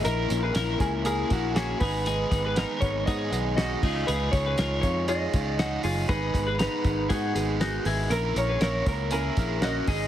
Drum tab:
CC |--------|-------x|--------|--------|
HH |xxxxxxxo|xxxxxxx-|xxxxxxxo|xxxxxxxo|
SD |--o---o-|--o---o-|--o---o-|--o---o-|
BD |---o-o-o|-o-oo--o|-o-o-o--|oo-oo---|

CC |--------|
HH |xxxxxxxo|
SD |--o---o-|
BD |---o-o-o|